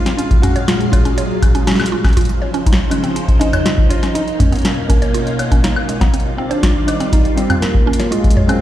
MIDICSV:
0, 0, Header, 1, 6, 480
1, 0, Start_track
1, 0, Tempo, 495868
1, 179, Time_signature, 4, 2, 24, 8
1, 8336, End_track
2, 0, Start_track
2, 0, Title_t, "Synth texture"
2, 0, Program_c, 0, 99
2, 2099, Note_on_c, 0, 65, 87
2, 2099, Note_on_c, 0, 77, 84
2, 8336, Note_off_c, 0, 65, 0
2, 8336, Note_off_c, 0, 77, 0
2, 8336, End_track
3, 0, Start_track
3, 0, Title_t, "Felt piano"
3, 0, Program_c, 1, 0
3, 0, Note_on_c, 1, 65, 100
3, 152, Note_off_c, 1, 65, 0
3, 166, Note_on_c, 1, 65, 106
3, 395, Note_off_c, 1, 65, 0
3, 406, Note_on_c, 1, 66, 108
3, 859, Note_off_c, 1, 66, 0
3, 886, Note_on_c, 1, 65, 110
3, 1814, Note_off_c, 1, 65, 0
3, 2805, Note_on_c, 1, 61, 103
3, 3285, Note_on_c, 1, 63, 122
3, 3307, Note_off_c, 1, 61, 0
3, 3738, Note_off_c, 1, 63, 0
3, 3767, Note_on_c, 1, 65, 107
3, 4007, Note_on_c, 1, 63, 107
3, 4020, Note_off_c, 1, 65, 0
3, 4236, Note_off_c, 1, 63, 0
3, 4246, Note_on_c, 1, 61, 97
3, 4699, Note_off_c, 1, 61, 0
3, 4727, Note_on_c, 1, 58, 100
3, 5654, Note_off_c, 1, 58, 0
3, 6166, Note_on_c, 1, 60, 85
3, 6286, Note_on_c, 1, 62, 98
3, 6296, Note_off_c, 1, 60, 0
3, 6646, Note_on_c, 1, 63, 102
3, 6664, Note_off_c, 1, 62, 0
3, 7126, Note_on_c, 1, 60, 89
3, 7147, Note_off_c, 1, 63, 0
3, 7366, Note_on_c, 1, 58, 91
3, 7380, Note_off_c, 1, 60, 0
3, 7591, Note_off_c, 1, 58, 0
3, 7606, Note_on_c, 1, 58, 90
3, 7835, Note_off_c, 1, 58, 0
3, 7846, Note_on_c, 1, 56, 94
3, 8206, Note_on_c, 1, 60, 103
3, 8224, Note_off_c, 1, 56, 0
3, 8336, Note_off_c, 1, 60, 0
3, 8336, End_track
4, 0, Start_track
4, 0, Title_t, "Synth arpeggio sound"
4, 0, Program_c, 2, 84
4, 60, Note_on_c, 2, 60, 104
4, 107, Note_off_c, 2, 60, 0
4, 180, Note_on_c, 2, 61, 81
4, 259, Note_off_c, 2, 61, 0
4, 420, Note_on_c, 2, 61, 102
4, 499, Note_off_c, 2, 61, 0
4, 539, Note_on_c, 2, 73, 103
4, 587, Note_off_c, 2, 73, 0
4, 659, Note_on_c, 2, 65, 102
4, 739, Note_off_c, 2, 65, 0
4, 899, Note_on_c, 2, 73, 75
4, 1013, Note_off_c, 2, 73, 0
4, 1019, Note_on_c, 2, 61, 99
4, 1099, Note_off_c, 2, 61, 0
4, 1139, Note_on_c, 2, 73, 101
4, 1253, Note_off_c, 2, 73, 0
4, 1379, Note_on_c, 2, 61, 80
4, 1488, Note_off_c, 2, 61, 0
4, 1499, Note_on_c, 2, 61, 101
4, 1547, Note_off_c, 2, 61, 0
4, 1619, Note_on_c, 2, 61, 104
4, 1733, Note_off_c, 2, 61, 0
4, 1860, Note_on_c, 2, 65, 107
4, 1973, Note_off_c, 2, 65, 0
4, 1980, Note_on_c, 2, 61, 74
4, 2093, Note_off_c, 2, 61, 0
4, 2099, Note_on_c, 2, 65, 105
4, 2179, Note_off_c, 2, 65, 0
4, 2340, Note_on_c, 2, 73, 78
4, 2453, Note_off_c, 2, 73, 0
4, 2459, Note_on_c, 2, 61, 105
4, 2539, Note_off_c, 2, 61, 0
4, 2579, Note_on_c, 2, 63, 83
4, 2693, Note_off_c, 2, 63, 0
4, 2819, Note_on_c, 2, 56, 74
4, 2867, Note_off_c, 2, 56, 0
4, 2939, Note_on_c, 2, 60, 102
4, 2987, Note_off_c, 2, 60, 0
4, 3059, Note_on_c, 2, 61, 85
4, 3139, Note_off_c, 2, 61, 0
4, 3299, Note_on_c, 2, 61, 105
4, 3379, Note_off_c, 2, 61, 0
4, 3419, Note_on_c, 2, 73, 105
4, 3467, Note_off_c, 2, 73, 0
4, 3540, Note_on_c, 2, 65, 102
4, 3619, Note_off_c, 2, 65, 0
4, 3780, Note_on_c, 2, 73, 80
4, 3893, Note_off_c, 2, 73, 0
4, 3900, Note_on_c, 2, 61, 102
4, 3979, Note_off_c, 2, 61, 0
4, 4019, Note_on_c, 2, 63, 83
4, 4133, Note_off_c, 2, 63, 0
4, 4259, Note_on_c, 2, 56, 79
4, 4307, Note_off_c, 2, 56, 0
4, 4379, Note_on_c, 2, 59, 99
4, 4427, Note_off_c, 2, 59, 0
4, 4499, Note_on_c, 2, 61, 87
4, 4579, Note_off_c, 2, 61, 0
4, 4739, Note_on_c, 2, 61, 99
4, 4819, Note_off_c, 2, 61, 0
4, 4859, Note_on_c, 2, 73, 102
4, 4907, Note_off_c, 2, 73, 0
4, 4979, Note_on_c, 2, 65, 100
4, 5059, Note_off_c, 2, 65, 0
4, 5219, Note_on_c, 2, 73, 77
4, 5333, Note_off_c, 2, 73, 0
4, 5339, Note_on_c, 2, 61, 101
4, 5419, Note_off_c, 2, 61, 0
4, 5459, Note_on_c, 2, 63, 82
4, 5573, Note_off_c, 2, 63, 0
4, 5700, Note_on_c, 2, 56, 81
4, 5747, Note_off_c, 2, 56, 0
4, 5820, Note_on_c, 2, 59, 105
4, 5867, Note_off_c, 2, 59, 0
4, 5939, Note_on_c, 2, 60, 81
4, 6019, Note_off_c, 2, 60, 0
4, 6179, Note_on_c, 2, 60, 102
4, 6259, Note_off_c, 2, 60, 0
4, 6299, Note_on_c, 2, 72, 102
4, 6347, Note_off_c, 2, 72, 0
4, 6419, Note_on_c, 2, 65, 104
4, 6499, Note_off_c, 2, 65, 0
4, 6660, Note_on_c, 2, 72, 73
4, 6774, Note_off_c, 2, 72, 0
4, 6780, Note_on_c, 2, 60, 104
4, 6859, Note_off_c, 2, 60, 0
4, 6900, Note_on_c, 2, 63, 82
4, 7014, Note_off_c, 2, 63, 0
4, 7140, Note_on_c, 2, 55, 78
4, 7187, Note_off_c, 2, 55, 0
4, 7260, Note_on_c, 2, 60, 106
4, 7307, Note_off_c, 2, 60, 0
4, 7380, Note_on_c, 2, 60, 84
4, 7459, Note_off_c, 2, 60, 0
4, 7620, Note_on_c, 2, 61, 111
4, 7699, Note_off_c, 2, 61, 0
4, 7740, Note_on_c, 2, 73, 97
4, 7787, Note_off_c, 2, 73, 0
4, 7859, Note_on_c, 2, 65, 108
4, 7939, Note_off_c, 2, 65, 0
4, 8100, Note_on_c, 2, 73, 82
4, 8213, Note_off_c, 2, 73, 0
4, 8219, Note_on_c, 2, 61, 106
4, 8299, Note_off_c, 2, 61, 0
4, 8336, End_track
5, 0, Start_track
5, 0, Title_t, "String machine"
5, 0, Program_c, 3, 50
5, 0, Note_on_c, 3, 46, 83
5, 0, Note_on_c, 3, 54, 77
5, 0, Note_on_c, 3, 56, 78
5, 0, Note_on_c, 3, 77, 91
5, 2061, Note_off_c, 3, 77, 0
5, 2078, Note_off_c, 3, 46, 0
5, 2078, Note_off_c, 3, 54, 0
5, 2078, Note_off_c, 3, 56, 0
5, 2099, Note_on_c, 3, 72, 75
5, 2100, Note_on_c, 3, 49, 83
5, 2100, Note_on_c, 3, 53, 76
5, 2100, Note_on_c, 3, 63, 90
5, 4000, Note_off_c, 3, 49, 0
5, 4000, Note_off_c, 3, 53, 0
5, 4000, Note_off_c, 3, 72, 0
5, 4020, Note_on_c, 3, 47, 83
5, 4020, Note_on_c, 3, 58, 78
5, 4020, Note_on_c, 3, 61, 80
5, 5901, Note_off_c, 3, 63, 0
5, 5920, Note_off_c, 3, 47, 0
5, 5920, Note_off_c, 3, 58, 0
5, 5920, Note_off_c, 3, 61, 0
5, 5939, Note_on_c, 3, 55, 74
5, 5940, Note_on_c, 3, 51, 84
5, 5940, Note_on_c, 3, 65, 94
5, 5940, Note_on_c, 3, 74, 76
5, 7603, Note_off_c, 3, 51, 0
5, 7603, Note_off_c, 3, 55, 0
5, 7603, Note_off_c, 3, 74, 0
5, 7619, Note_on_c, 3, 46, 87
5, 7619, Note_on_c, 3, 54, 75
5, 7619, Note_on_c, 3, 56, 76
5, 8336, Note_off_c, 3, 46, 0
5, 8336, Note_off_c, 3, 54, 0
5, 8336, Note_off_c, 3, 56, 0
5, 8336, Note_off_c, 3, 65, 0
5, 8336, End_track
6, 0, Start_track
6, 0, Title_t, "Drums"
6, 59, Note_on_c, 9, 38, 67
6, 59, Note_on_c, 9, 42, 58
6, 156, Note_off_c, 9, 38, 0
6, 156, Note_off_c, 9, 42, 0
6, 179, Note_on_c, 9, 42, 77
6, 276, Note_off_c, 9, 42, 0
6, 299, Note_on_c, 9, 36, 122
6, 299, Note_on_c, 9, 42, 34
6, 396, Note_off_c, 9, 36, 0
6, 396, Note_off_c, 9, 42, 0
6, 420, Note_on_c, 9, 42, 77
6, 420, Note_on_c, 9, 45, 88
6, 516, Note_off_c, 9, 42, 0
6, 516, Note_off_c, 9, 45, 0
6, 539, Note_on_c, 9, 42, 51
6, 636, Note_off_c, 9, 42, 0
6, 659, Note_on_c, 9, 38, 123
6, 659, Note_on_c, 9, 42, 78
6, 756, Note_off_c, 9, 38, 0
6, 756, Note_off_c, 9, 42, 0
6, 780, Note_on_c, 9, 42, 38
6, 876, Note_off_c, 9, 42, 0
6, 899, Note_on_c, 9, 36, 116
6, 900, Note_on_c, 9, 42, 80
6, 900, Note_on_c, 9, 76, 37
6, 996, Note_off_c, 9, 36, 0
6, 997, Note_off_c, 9, 42, 0
6, 997, Note_off_c, 9, 76, 0
6, 1020, Note_on_c, 9, 42, 50
6, 1116, Note_off_c, 9, 42, 0
6, 1139, Note_on_c, 9, 42, 81
6, 1236, Note_off_c, 9, 42, 0
6, 1379, Note_on_c, 9, 36, 116
6, 1379, Note_on_c, 9, 42, 72
6, 1379, Note_on_c, 9, 76, 48
6, 1476, Note_off_c, 9, 36, 0
6, 1476, Note_off_c, 9, 42, 0
6, 1476, Note_off_c, 9, 76, 0
6, 1499, Note_on_c, 9, 42, 51
6, 1596, Note_off_c, 9, 42, 0
6, 1619, Note_on_c, 9, 38, 120
6, 1619, Note_on_c, 9, 42, 77
6, 1659, Note_off_c, 9, 38, 0
6, 1659, Note_on_c, 9, 38, 93
6, 1699, Note_off_c, 9, 38, 0
6, 1699, Note_on_c, 9, 38, 79
6, 1716, Note_off_c, 9, 42, 0
6, 1739, Note_off_c, 9, 38, 0
6, 1739, Note_on_c, 9, 38, 65
6, 1739, Note_on_c, 9, 76, 76
6, 1779, Note_off_c, 9, 38, 0
6, 1779, Note_on_c, 9, 38, 51
6, 1799, Note_on_c, 9, 42, 78
6, 1819, Note_off_c, 9, 38, 0
6, 1819, Note_on_c, 9, 38, 43
6, 1836, Note_off_c, 9, 76, 0
6, 1896, Note_off_c, 9, 42, 0
6, 1916, Note_off_c, 9, 38, 0
6, 1979, Note_on_c, 9, 36, 116
6, 1979, Note_on_c, 9, 38, 65
6, 1979, Note_on_c, 9, 42, 24
6, 1979, Note_on_c, 9, 76, 53
6, 2019, Note_off_c, 9, 42, 0
6, 2019, Note_on_c, 9, 42, 29
6, 2059, Note_off_c, 9, 42, 0
6, 2059, Note_on_c, 9, 42, 33
6, 2076, Note_off_c, 9, 36, 0
6, 2076, Note_off_c, 9, 38, 0
6, 2076, Note_off_c, 9, 76, 0
6, 2099, Note_off_c, 9, 42, 0
6, 2099, Note_on_c, 9, 36, 101
6, 2099, Note_on_c, 9, 42, 78
6, 2139, Note_off_c, 9, 42, 0
6, 2139, Note_on_c, 9, 42, 41
6, 2179, Note_off_c, 9, 42, 0
6, 2179, Note_on_c, 9, 42, 46
6, 2196, Note_off_c, 9, 36, 0
6, 2219, Note_off_c, 9, 42, 0
6, 2219, Note_on_c, 9, 42, 34
6, 2316, Note_off_c, 9, 42, 0
6, 2459, Note_on_c, 9, 42, 50
6, 2556, Note_off_c, 9, 42, 0
6, 2579, Note_on_c, 9, 36, 118
6, 2579, Note_on_c, 9, 42, 77
6, 2639, Note_on_c, 9, 38, 122
6, 2676, Note_off_c, 9, 36, 0
6, 2676, Note_off_c, 9, 42, 0
6, 2736, Note_off_c, 9, 38, 0
6, 2820, Note_on_c, 9, 42, 77
6, 2820, Note_on_c, 9, 76, 35
6, 2917, Note_off_c, 9, 42, 0
6, 2917, Note_off_c, 9, 76, 0
6, 2940, Note_on_c, 9, 42, 48
6, 3037, Note_off_c, 9, 42, 0
6, 3059, Note_on_c, 9, 42, 77
6, 3156, Note_off_c, 9, 42, 0
6, 3179, Note_on_c, 9, 36, 104
6, 3180, Note_on_c, 9, 42, 36
6, 3276, Note_off_c, 9, 36, 0
6, 3277, Note_off_c, 9, 42, 0
6, 3300, Note_on_c, 9, 42, 75
6, 3397, Note_off_c, 9, 42, 0
6, 3420, Note_on_c, 9, 42, 51
6, 3420, Note_on_c, 9, 45, 85
6, 3420, Note_on_c, 9, 76, 73
6, 3517, Note_off_c, 9, 42, 0
6, 3517, Note_off_c, 9, 45, 0
6, 3517, Note_off_c, 9, 76, 0
6, 3540, Note_on_c, 9, 38, 119
6, 3540, Note_on_c, 9, 42, 78
6, 3636, Note_off_c, 9, 38, 0
6, 3636, Note_off_c, 9, 42, 0
6, 3659, Note_on_c, 9, 36, 116
6, 3756, Note_off_c, 9, 36, 0
6, 3779, Note_on_c, 9, 42, 71
6, 3876, Note_off_c, 9, 42, 0
6, 3900, Note_on_c, 9, 38, 65
6, 3900, Note_on_c, 9, 42, 50
6, 3996, Note_off_c, 9, 38, 0
6, 3996, Note_off_c, 9, 42, 0
6, 4019, Note_on_c, 9, 42, 81
6, 4116, Note_off_c, 9, 42, 0
6, 4139, Note_on_c, 9, 42, 35
6, 4236, Note_off_c, 9, 42, 0
6, 4259, Note_on_c, 9, 36, 102
6, 4259, Note_on_c, 9, 42, 77
6, 4259, Note_on_c, 9, 45, 93
6, 4356, Note_off_c, 9, 36, 0
6, 4356, Note_off_c, 9, 42, 0
6, 4356, Note_off_c, 9, 45, 0
6, 4380, Note_on_c, 9, 42, 47
6, 4409, Note_off_c, 9, 42, 0
6, 4409, Note_on_c, 9, 42, 38
6, 4439, Note_off_c, 9, 42, 0
6, 4439, Note_on_c, 9, 42, 32
6, 4469, Note_off_c, 9, 42, 0
6, 4469, Note_on_c, 9, 42, 25
6, 4499, Note_off_c, 9, 42, 0
6, 4499, Note_on_c, 9, 38, 111
6, 4499, Note_on_c, 9, 42, 77
6, 4530, Note_off_c, 9, 42, 0
6, 4530, Note_on_c, 9, 42, 19
6, 4590, Note_off_c, 9, 42, 0
6, 4590, Note_on_c, 9, 42, 13
6, 4596, Note_off_c, 9, 38, 0
6, 4687, Note_off_c, 9, 42, 0
6, 4739, Note_on_c, 9, 36, 120
6, 4740, Note_on_c, 9, 42, 80
6, 4836, Note_off_c, 9, 36, 0
6, 4836, Note_off_c, 9, 42, 0
6, 4860, Note_on_c, 9, 42, 47
6, 4956, Note_off_c, 9, 42, 0
6, 4980, Note_on_c, 9, 42, 78
6, 5076, Note_off_c, 9, 42, 0
6, 5100, Note_on_c, 9, 42, 35
6, 5197, Note_off_c, 9, 42, 0
6, 5219, Note_on_c, 9, 42, 71
6, 5219, Note_on_c, 9, 76, 50
6, 5316, Note_off_c, 9, 42, 0
6, 5316, Note_off_c, 9, 76, 0
6, 5339, Note_on_c, 9, 36, 105
6, 5340, Note_on_c, 9, 42, 51
6, 5436, Note_off_c, 9, 36, 0
6, 5437, Note_off_c, 9, 42, 0
6, 5460, Note_on_c, 9, 38, 112
6, 5460, Note_on_c, 9, 42, 72
6, 5557, Note_off_c, 9, 38, 0
6, 5557, Note_off_c, 9, 42, 0
6, 5580, Note_on_c, 9, 76, 83
6, 5677, Note_off_c, 9, 76, 0
6, 5700, Note_on_c, 9, 42, 74
6, 5797, Note_off_c, 9, 42, 0
6, 5819, Note_on_c, 9, 36, 122
6, 5820, Note_on_c, 9, 38, 62
6, 5820, Note_on_c, 9, 42, 53
6, 5820, Note_on_c, 9, 76, 56
6, 5916, Note_off_c, 9, 36, 0
6, 5917, Note_off_c, 9, 38, 0
6, 5917, Note_off_c, 9, 42, 0
6, 5917, Note_off_c, 9, 76, 0
6, 5940, Note_on_c, 9, 42, 79
6, 6000, Note_off_c, 9, 42, 0
6, 6000, Note_on_c, 9, 42, 38
6, 6096, Note_off_c, 9, 42, 0
6, 6300, Note_on_c, 9, 42, 51
6, 6397, Note_off_c, 9, 42, 0
6, 6419, Note_on_c, 9, 36, 103
6, 6420, Note_on_c, 9, 38, 119
6, 6420, Note_on_c, 9, 42, 79
6, 6516, Note_off_c, 9, 36, 0
6, 6516, Note_off_c, 9, 38, 0
6, 6516, Note_off_c, 9, 42, 0
6, 6659, Note_on_c, 9, 42, 82
6, 6659, Note_on_c, 9, 76, 40
6, 6756, Note_off_c, 9, 42, 0
6, 6756, Note_off_c, 9, 76, 0
6, 6779, Note_on_c, 9, 42, 50
6, 6876, Note_off_c, 9, 42, 0
6, 6899, Note_on_c, 9, 36, 114
6, 6899, Note_on_c, 9, 42, 79
6, 6996, Note_off_c, 9, 36, 0
6, 6996, Note_off_c, 9, 42, 0
6, 7019, Note_on_c, 9, 42, 36
6, 7116, Note_off_c, 9, 42, 0
6, 7139, Note_on_c, 9, 42, 71
6, 7236, Note_off_c, 9, 42, 0
6, 7259, Note_on_c, 9, 42, 51
6, 7259, Note_on_c, 9, 45, 90
6, 7259, Note_on_c, 9, 76, 84
6, 7356, Note_off_c, 9, 42, 0
6, 7356, Note_off_c, 9, 45, 0
6, 7356, Note_off_c, 9, 76, 0
6, 7379, Note_on_c, 9, 38, 111
6, 7379, Note_on_c, 9, 42, 76
6, 7476, Note_off_c, 9, 38, 0
6, 7476, Note_off_c, 9, 42, 0
6, 7499, Note_on_c, 9, 36, 100
6, 7596, Note_off_c, 9, 36, 0
6, 7679, Note_on_c, 9, 42, 79
6, 7739, Note_off_c, 9, 42, 0
6, 7739, Note_on_c, 9, 38, 59
6, 7739, Note_on_c, 9, 42, 53
6, 7836, Note_off_c, 9, 38, 0
6, 7836, Note_off_c, 9, 42, 0
6, 7859, Note_on_c, 9, 42, 80
6, 7956, Note_off_c, 9, 42, 0
6, 7979, Note_on_c, 9, 36, 113
6, 7979, Note_on_c, 9, 42, 36
6, 8039, Note_off_c, 9, 42, 0
6, 8039, Note_on_c, 9, 42, 75
6, 8076, Note_off_c, 9, 36, 0
6, 8099, Note_on_c, 9, 45, 97
6, 8136, Note_off_c, 9, 42, 0
6, 8196, Note_off_c, 9, 45, 0
6, 8219, Note_on_c, 9, 42, 53
6, 8219, Note_on_c, 9, 76, 60
6, 8316, Note_off_c, 9, 42, 0
6, 8316, Note_off_c, 9, 76, 0
6, 8336, End_track
0, 0, End_of_file